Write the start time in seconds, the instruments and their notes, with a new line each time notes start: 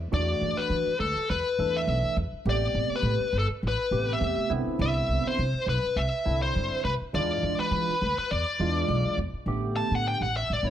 Already playing: upright bass E2
0.12 upright bass E2, tine electric piano E3 A3 D4 F#4, lead electric guitar D5
0.41 upright bass E2
0.57 lead electric guitar B4, muted upright bass stroke
0.70 upright bass E3
0.86 muted upright bass stroke
1.00 upright bass D2, lead electric guitar A4
1.16 muted upright bass stroke
1.30 upright bass E2, lead electric guitar B4
1.59 upright bass E2, tine electric piano E3 A3 D4 A4
1.77 lead electric guitar E5
1.87 upright bass B1
2.04 muted upright bass stroke
2.17 upright bass E2
2.33 muted upright bass stroke
2.46 upright bass A1, tine electric piano C3 A3 B3 G4, lead electric guitar D5
2.75 upright bass A1
2.90 muted upright bass stroke
2.96 lead electric guitar B4
3.02 upright bass A2
3.20 muted upright bass stroke
3.33 upright bass G1
3.39 lead electric guitar A4
3.49 muted upright bass stroke
3.63 upright bass A1
3.68 lead electric guitar B4
3.91 upright bass A1, tine electric piano C3 A3 B3 G4
4.13 lead electric guitar E5
4.21 upright bass E2
4.37 muted upright bass stroke
4.50 upright bass C2, tine electric piano D3 B3 C4 E4
4.67 muted upright bass stroke
4.79 upright bass C2, lead electric guitar E5
5.09 upright bass C2
5.25 lead electric guitar C5, muted upright bass stroke
5.39 upright bass C3
5.54 muted upright bass stroke
5.66 upright bass B1, lead electric guitar B4
5.83 muted upright bass stroke
5.96 upright bass C2, lead electric guitar E5
6.25 upright bass C2, tine electric piano D3 C4 D4 E4
6.42 lead electric guitar C5
6.56 upright bass G2
6.71 muted upright bass stroke
6.84 upright bass C2, lead electric guitar B4
7.01 muted upright bass stroke
7.13 upright bass E2, tine electric piano E3 G#3 D4 F4, lead electric guitar D5
7.43 upright bass E2
7.58 lead electric guitar B4, muted upright bass stroke
7.71 upright bass E3
7.89 muted upright bass stroke
8.02 upright bass D2
8.18 lead electric guitar B4, muted upright bass stroke
8.31 upright bass E2, lead electric guitar D5
8.59 upright bass E2, tine electric piano E3 G#3 D4 F4
8.88 upright bass B1
9.04 muted upright bass stroke
9.18 upright bass E2
9.33 muted upright bass stroke
9.46 upright bass A1, tine electric piano D3 A3 B3 G4
9.76 lead electric guitar A5
9.91 upright bass A2
9.95 lead electric guitar F#5
10.08 lead electric guitar G5
10.21 upright bass A1, lead electric guitar F#5
10.37 lead electric guitar E5
10.50 upright bass A1, lead electric guitar D5
10.63 upright bass A1, tine electric piano D3 A3 B3 E4
10.67 lead electric guitar C#5